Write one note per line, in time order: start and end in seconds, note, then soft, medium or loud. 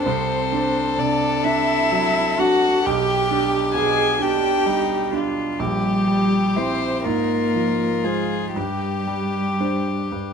0.04 2.81 C2 soft
0.04 0.98 C4 medium
0.04 2.87 A4 medium
0.04 1.00 C5 medium
0.53 1.26 D4 soft
0.98 1.72 C3 soft
0.98 1.44 D4 medium
0.98 1.46 D5 medium
1.43 2.20 D4 soft
1.43 2.40 E4 medium
1.43 2.41 E5 medium
1.92 2.67 F#3 soft
2.39 2.85 D4 soft
2.39 2.85 F#4 medium
2.39 2.87 F#5 medium
2.85 5.56 B1 soft
2.85 4.20 G4 medium
2.85 3.77 G4 medium
2.85 3.74 G5 medium
3.31 4.02 D4 soft
3.75 4.47 B2 soft
3.75 4.20 G#4 medium
3.75 4.22 G#5 medium
4.20 4.93 D4 soft
4.20 4.67 D4 soft
4.20 5.11 G4 medium
4.20 5.13 G5 medium
4.66 5.41 G3 soft
4.66 5.12 D#4 soft
5.13 5.60 D4 soft
5.13 5.61 F4 medium
5.59 7.00 A#1 soft
5.59 6.59 G3 medium
5.59 6.58 G4 medium
5.59 7.06 G4 medium
6.08 6.85 G3 soft
6.56 7.06 C4 medium
6.56 7.01 E4 soft
6.56 7.05 C5 medium
6.56 7.01 C5 soft
7.04 8.53 G#2 soft
7.04 8.07 A#3 medium
7.04 8.58 F4 soft
7.04 8.06 A#4 medium
7.55 8.36 F3 soft
8.04 8.56 G#3 medium
8.04 8.52 F4 soft
8.04 8.54 G#4 soft
8.04 8.52 C5 soft
8.55 10.09 G2 soft
8.55 10.10 G3 medium
8.55 10.09 G4 soft
8.55 10.33 G4 soft
9.07 9.91 G3 soft
9.60 10.09 D4 soft
9.60 10.09 C5 soft
10.12 10.33 G2 soft